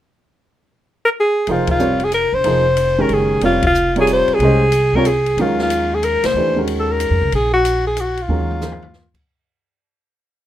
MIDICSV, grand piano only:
0, 0, Header, 1, 2, 480
1, 0, Start_track
1, 0, Tempo, 324324
1, 734, Time_signature, 3, 2, 24, 8
1, 15485, End_track
2, 0, Start_track
2, 0, Title_t, "Grand piano"
2, 0, Program_c, 0, 0
2, 2188, Note_on_c, 0, 53, 47
2, 2200, Note_on_c, 0, 63, 46
2, 2202, Note_on_c, 0, 58, 43
2, 2208, Note_on_c, 0, 68, 46
2, 2219, Note_on_c, 0, 72, 56
2, 2648, Note_off_c, 0, 53, 0
2, 2654, Note_off_c, 0, 63, 0
2, 2655, Note_off_c, 0, 58, 0
2, 2656, Note_on_c, 0, 55, 53
2, 2658, Note_off_c, 0, 68, 0
2, 2662, Note_on_c, 0, 60, 52
2, 2663, Note_on_c, 0, 65, 48
2, 2664, Note_off_c, 0, 72, 0
2, 2676, Note_on_c, 0, 73, 56
2, 2677, Note_on_c, 0, 70, 46
2, 2937, Note_off_c, 0, 55, 0
2, 2940, Note_off_c, 0, 60, 0
2, 2940, Note_off_c, 0, 65, 0
2, 2947, Note_off_c, 0, 73, 0
2, 2948, Note_off_c, 0, 70, 0
2, 3609, Note_on_c, 0, 53, 49
2, 3625, Note_on_c, 0, 58, 52
2, 3630, Note_on_c, 0, 63, 52
2, 3639, Note_on_c, 0, 72, 57
2, 3646, Note_on_c, 0, 68, 46
2, 3896, Note_off_c, 0, 53, 0
2, 3904, Note_off_c, 0, 58, 0
2, 3907, Note_off_c, 0, 63, 0
2, 3911, Note_off_c, 0, 72, 0
2, 3915, Note_off_c, 0, 68, 0
2, 4416, Note_on_c, 0, 51, 65
2, 4418, Note_on_c, 0, 56, 60
2, 4430, Note_on_c, 0, 61, 56
2, 4437, Note_on_c, 0, 70, 62
2, 4438, Note_on_c, 0, 67, 55
2, 5036, Note_off_c, 0, 51, 0
2, 5037, Note_off_c, 0, 56, 0
2, 5043, Note_off_c, 0, 61, 0
2, 5047, Note_off_c, 0, 67, 0
2, 5047, Note_off_c, 0, 70, 0
2, 5069, Note_on_c, 0, 55, 53
2, 5074, Note_on_c, 0, 60, 52
2, 5081, Note_on_c, 0, 65, 48
2, 5088, Note_on_c, 0, 70, 51
2, 5089, Note_on_c, 0, 73, 58
2, 5349, Note_off_c, 0, 55, 0
2, 5351, Note_off_c, 0, 60, 0
2, 5355, Note_off_c, 0, 65, 0
2, 5358, Note_off_c, 0, 70, 0
2, 5359, Note_off_c, 0, 73, 0
2, 5857, Note_on_c, 0, 55, 62
2, 5874, Note_on_c, 0, 48, 55
2, 5877, Note_on_c, 0, 65, 58
2, 5882, Note_on_c, 0, 70, 52
2, 5897, Note_on_c, 0, 73, 71
2, 6479, Note_off_c, 0, 55, 0
2, 6487, Note_off_c, 0, 48, 0
2, 6489, Note_off_c, 0, 65, 0
2, 6491, Note_off_c, 0, 70, 0
2, 6499, Note_off_c, 0, 73, 0
2, 6543, Note_on_c, 0, 56, 65
2, 6555, Note_on_c, 0, 61, 57
2, 6562, Note_on_c, 0, 67, 56
2, 6564, Note_on_c, 0, 72, 60
2, 6579, Note_on_c, 0, 75, 70
2, 6808, Note_off_c, 0, 56, 0
2, 6814, Note_off_c, 0, 61, 0
2, 6818, Note_off_c, 0, 67, 0
2, 6819, Note_off_c, 0, 72, 0
2, 6826, Note_off_c, 0, 75, 0
2, 7330, Note_on_c, 0, 55, 58
2, 7348, Note_on_c, 0, 60, 64
2, 7352, Note_on_c, 0, 65, 62
2, 7355, Note_on_c, 0, 70, 59
2, 7367, Note_on_c, 0, 73, 70
2, 7472, Note_off_c, 0, 55, 0
2, 7481, Note_off_c, 0, 60, 0
2, 7484, Note_off_c, 0, 65, 0
2, 7485, Note_off_c, 0, 70, 0
2, 7491, Note_off_c, 0, 73, 0
2, 7980, Note_on_c, 0, 51, 50
2, 7987, Note_on_c, 0, 56, 52
2, 7988, Note_on_c, 0, 61, 50
2, 8003, Note_on_c, 0, 54, 47
2, 8012, Note_on_c, 0, 70, 57
2, 9305, Note_off_c, 0, 51, 0
2, 9308, Note_off_c, 0, 56, 0
2, 9309, Note_off_c, 0, 61, 0
2, 9316, Note_off_c, 0, 54, 0
2, 9321, Note_off_c, 0, 70, 0
2, 9418, Note_on_c, 0, 52, 49
2, 9424, Note_on_c, 0, 62, 44
2, 9425, Note_on_c, 0, 57, 44
2, 9434, Note_on_c, 0, 67, 46
2, 9438, Note_on_c, 0, 71, 46
2, 9684, Note_off_c, 0, 52, 0
2, 9687, Note_off_c, 0, 62, 0
2, 9688, Note_off_c, 0, 57, 0
2, 9692, Note_off_c, 0, 67, 0
2, 9694, Note_off_c, 0, 71, 0
2, 9710, Note_on_c, 0, 51, 50
2, 9710, Note_on_c, 0, 56, 43
2, 9720, Note_on_c, 0, 61, 39
2, 9729, Note_on_c, 0, 66, 43
2, 9741, Note_on_c, 0, 70, 57
2, 10732, Note_off_c, 0, 56, 0
2, 10733, Note_off_c, 0, 51, 0
2, 10737, Note_off_c, 0, 61, 0
2, 10742, Note_off_c, 0, 66, 0
2, 10748, Note_off_c, 0, 70, 0
2, 12264, Note_on_c, 0, 51, 53
2, 12277, Note_on_c, 0, 56, 52
2, 12277, Note_on_c, 0, 61, 48
2, 12288, Note_on_c, 0, 70, 56
2, 12290, Note_on_c, 0, 54, 57
2, 12726, Note_off_c, 0, 51, 0
2, 12733, Note_off_c, 0, 56, 0
2, 12733, Note_off_c, 0, 61, 0
2, 12738, Note_off_c, 0, 70, 0
2, 12739, Note_off_c, 0, 54, 0
2, 12742, Note_on_c, 0, 53, 46
2, 12745, Note_on_c, 0, 58, 48
2, 12754, Note_on_c, 0, 63, 40
2, 12758, Note_on_c, 0, 68, 47
2, 12767, Note_on_c, 0, 72, 53
2, 13020, Note_off_c, 0, 53, 0
2, 13022, Note_off_c, 0, 58, 0
2, 13026, Note_off_c, 0, 63, 0
2, 13028, Note_off_c, 0, 68, 0
2, 13032, Note_off_c, 0, 72, 0
2, 15485, End_track
0, 0, End_of_file